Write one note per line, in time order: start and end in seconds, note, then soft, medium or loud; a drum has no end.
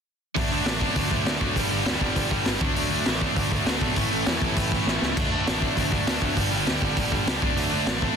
0.36 0.57 D2 medium
0.36 0.52 D3 medium
0.36 0.51 F#3 medium
0.36 0.51 A3 loud
0.36 0.51 D4 loud
0.36 kick loud
0.36 open hi-hat medium
0.51 0.64 D3 medium
0.51 0.65 F#3 medium
0.51 0.66 A3 medium
0.51 0.67 D4 medium
0.66 0.86 A1 medium
0.66 0.80 D3 medium
0.66 0.80 F#3 medium
0.66 0.80 A3 medium
0.66 0.80 D4 medium
0.66 snare loud
0.66 open hi-hat medium
0.80 0.94 D3 medium
0.80 0.95 F#3 medium
0.80 0.95 A3 medium
0.80 0.97 D4 medium
0.80 kick medium
0.96 1.06 D2 medium
0.96 1.10 D3 loud
0.96 1.10 F#3 medium
0.96 1.09 A3 loud
0.96 1.09 D4 loud
0.96 kick medium
0.96 open hi-hat medium
1.10 1.21 D2 medium
1.10 1.23 D3 medium
1.10 1.24 F#3 medium
1.10 1.24 A3 medium
1.10 1.25 D4 medium
1.10 kick medium
1.25 1.36 D2 medium
1.25 1.40 D3 medium
1.25 1.40 F#3 medium
1.25 1.40 A3 medium
1.25 1.40 D4 loud
1.25 snare loud
1.25 open hi-hat medium
1.40 1.51 D2 medium
1.40 1.54 D3 medium
1.40 1.55 F#3 medium
1.40 1.55 A3 medium
1.40 1.55 D4 medium
1.40 kick medium
1.54 1.66 G1 medium
1.54 1.70 G2 medium
1.54 1.70 D3 loud
1.54 1.69 G3 medium
1.54 1.69 B3 loud
1.54 1.70 D4 loud
1.54 kick medium
1.54 open hi-hat medium
1.70 1.82 G1 medium
1.70 1.84 G2 medium
1.70 1.85 D3 medium
1.70 1.85 G3 medium
1.70 1.85 B3 medium
1.70 1.86 D4 loud
1.85 1.96 D2 medium
1.85 2.00 G2 medium
1.85 2.00 D3 medium
1.85 1.99 G3 medium
1.85 1.99 B3 loud
1.85 1.99 D4 medium
1.85 snare loud
1.85 open hi-hat medium
2.00 2.11 G1 medium
2.00 2.14 G2 medium
2.00 2.14 D3 medium
2.00 2.15 G3 medium
2.00 2.15 B3 medium
2.00 2.15 D4 medium
2.00 kick medium
2.15 2.37 G1 medium
2.15 2.31 G2 medium
2.15 2.31 D3 loud
2.15 2.30 G3 medium
2.15 2.30 B3 loud
2.15 2.29 D4 loud
2.15 kick loud
2.15 open hi-hat medium
2.30 2.44 G2 medium
2.30 2.45 D3 medium
2.30 2.45 G3 medium
2.30 2.46 B3 medium
2.30 2.46 D4 medium
2.30 kick medium
2.45 2.56 G1 medium
2.45 2.60 G2 medium
2.45 2.60 D3 medium
2.45 2.60 G3 medium
2.45 2.61 B3 medium
2.45 2.61 D4 medium
2.45 snare loud
2.45 open hi-hat medium
2.61 2.71 D2 medium
2.61 2.76 D3 medium
2.61 2.75 F#3 medium
2.61 2.76 A3 medium
2.61 2.74 D4 loud
2.61 kick loud
2.76 2.97 D2 loud
2.76 2.89 D3 medium
2.76 2.90 F#3 loud
2.76 2.91 A3 medium
2.76 2.91 D4 loud
2.76 open hi-hat medium
2.91 3.06 D3 medium
2.91 3.06 F#3 loud
2.91 3.06 A3 medium
2.91 3.05 D4 medium
3.06 3.27 A1 medium
3.06 3.19 D3 medium
3.06 3.20 F#3 medium
3.06 3.21 A3 medium
3.06 3.21 D4 medium
3.06 snare loud
3.06 open hi-hat medium
3.21 3.36 D3 medium
3.21 3.35 F#3 medium
3.21 3.36 A3 medium
3.21 3.35 D4 medium
3.21 kick medium
3.36 3.46 D2 medium
3.36 3.49 D3 medium
3.36 3.50 F#3 medium
3.36 3.51 A3 medium
3.36 3.51 D4 loud
3.36 kick loud
3.36 open hi-hat medium
3.51 3.62 D2 medium
3.51 3.66 D3 medium
3.51 3.66 F#3 medium
3.51 3.66 A3 medium
3.51 3.64 D4 loud
3.51 kick medium
3.66 3.77 D2 medium
3.66 3.80 D3 medium
3.66 3.80 F#3 medium
3.66 3.81 A3 medium
3.66 3.81 D4 medium
3.66 snare loud
3.66 open hi-hat medium
3.81 3.91 B1 medium
3.81 3.95 D3 medium
3.81 3.95 F#3 medium
3.81 3.96 A3 medium
3.81 3.96 D4 medium
3.81 kick medium
3.96 4.07 A1 loud
3.96 4.11 A2 medium
3.96 4.11 E3 medium
3.96 4.11 A3 loud
3.96 4.10 C#4 loud
3.96 4.10 E4 loud
3.96 kick loud
3.96 open hi-hat medium
4.11 4.22 A1 medium
4.11 4.25 A2 medium
4.11 4.26 E3 medium
4.11 4.27 A3 medium
4.11 4.26 C#4 medium
4.11 4.27 E4 medium
4.26 4.37 E2 medium
4.26 4.42 A2 medium
4.26 4.42 E3 medium
4.26 4.41 A3 medium
4.26 4.41 C#4 loud
4.26 4.41 E4 loud
4.26 snare loud
4.26 open hi-hat medium
4.41 4.52 A1 medium
4.41 4.55 A2 medium
4.41 4.55 E3 medium
4.41 4.56 A3 medium
4.41 4.56 C#4 medium
4.41 4.57 E4 medium
4.41 kick medium
4.56 4.77 A1 medium
4.56 4.72 A2 medium
4.56 4.72 E3 medium
4.56 4.71 A3 medium
4.56 4.71 C#4 medium
4.56 4.71 E4 medium
4.56 kick loud
4.56 open hi-hat medium
4.72 4.85 A2 medium
4.72 4.86 E3 medium
4.72 4.86 A3 medium
4.72 4.86 C#4 medium
4.72 4.87 E4 medium
4.72 kick medium
4.86 4.97 A1 medium
4.86 5.02 A2 medium
4.86 5.02 E3 medium
4.86 5.01 A3 medium
4.86 5.01 C#4 medium
4.86 5.00 E4 medium
4.86 snare medium
5.02 5.12 C#2 medium
5.02 5.16 A2 medium
5.02 5.16 E3 medium
5.02 5.16 A3 medium
5.02 5.16 C#4 medium
5.02 5.16 E4 medium
5.02 snare medium
5.17 5.37 D2 medium
5.17 5.32 D3 medium
5.17 5.32 F#3 loud
5.17 5.31 A3 loud
5.17 5.32 D4 medium
5.17 kick loud
5.17 crash loud
5.32 5.45 D3 medium
5.32 5.46 F#3 medium
5.32 5.46 A3 medium
5.32 5.47 D4 medium
5.46 5.67 A1 medium
5.46 5.62 D3 medium
5.46 5.61 F#3 medium
5.46 5.61 A3 medium
5.46 5.61 D4 medium
5.46 snare loud
5.46 open hi-hat medium
5.62 5.75 D3 medium
5.62 5.76 F#3 medium
5.62 5.76 A3 medium
5.62 5.77 D4 loud
5.62 kick medium
5.76 5.87 D2 medium
5.76 5.91 D3 medium
5.76 5.91 F#3 loud
5.76 5.90 A3 medium
5.76 5.90 D4 loud
5.76 kick loud
5.76 open hi-hat medium
5.91 6.02 D2 medium
5.91 6.05 D3 medium
5.91 6.06 F#3 medium
5.91 6.06 A3 medium
5.91 6.07 D4 medium
5.91 kick medium
6.07 6.17 D2 medium
6.07 6.22 D3 medium
6.07 6.21 F#3 medium
6.07 6.21 A3 medium
6.07 6.21 D4 loud
6.07 snare loud
6.07 open hi-hat medium
6.21 6.32 D2 medium
6.21 6.36 D3 medium
6.21 6.36 F#3 medium
6.21 6.36 A3 medium
6.21 6.38 D4 medium
6.21 kick medium
6.36 6.47 G1 medium
6.36 6.53 G2 medium
6.36 6.52 D3 medium
6.36 6.52 G3 loud
6.36 6.51 B3 loud
6.36 6.52 D4 loud
6.36 kick medium
6.36 open hi-hat medium
6.52 6.62 G1 medium
6.52 6.66 G2 medium
6.52 6.67 D3 medium
6.52 6.67 G3 medium
6.52 6.67 B3 medium
6.52 6.69 D4 medium
6.66 6.76 D2 medium
6.66 6.82 G2 medium
6.66 6.82 D3 medium
6.66 6.82 G3 medium
6.66 6.82 B3 medium
6.66 6.81 D4 medium
6.66 snare loud
6.66 open hi-hat medium
6.82 6.92 G1 medium
6.82 6.96 G2 medium
6.82 6.96 D3 medium
6.82 6.97 G3 medium
6.82 6.98 B3 medium
6.82 6.98 D4 medium
6.82 kick medium
6.97 7.17 G1 loud
6.97 7.12 G2 medium
6.97 7.12 D3 loud
6.97 7.11 G3 medium
6.97 7.11 B3 loud
6.97 7.11 D4 loud
6.97 kick loud
6.97 open hi-hat medium
7.12 7.26 G2 medium
7.12 7.26 D3 medium
7.12 7.26 G3 medium
7.12 7.27 B3 medium
7.12 7.27 D4 loud
7.12 kick medium
7.27 7.37 C#2 medium
7.27 7.41 G2 medium
7.27 7.41 D3 medium
7.27 7.41 G3 loud
7.27 7.41 B3 loud
7.27 7.42 D4 medium
7.27 snare loud
7.27 open hi-hat medium
7.42 7.52 D2 medium
7.42 7.58 D3 medium
7.42 7.58 F#3 medium
7.42 7.57 A3 loud
7.42 7.57 D4 loud
7.42 kick loud
7.57 7.77 D2 medium
7.57 7.71 D3 medium
7.57 7.71 F#3 medium
7.57 7.72 A3 loud
7.57 7.73 D4 loud
7.57 open hi-hat medium
7.72 7.88 D3 medium
7.72 7.87 F#3 medium
7.72 7.87 A3 medium
7.72 7.86 D4 loud
7.87 8.07 A1 medium
7.87 8.02 D3 medium
7.87 8.02 F#3 medium
7.87 8.03 A3 medium
7.87 8.03 D4 medium
7.87 snare loud
7.87 open hi-hat medium
8.02 8.16 D3 medium
8.02 8.16 F#3 medium
8.02 8.16 A3 medium
8.02 8.16 D4 medium
8.02 kick medium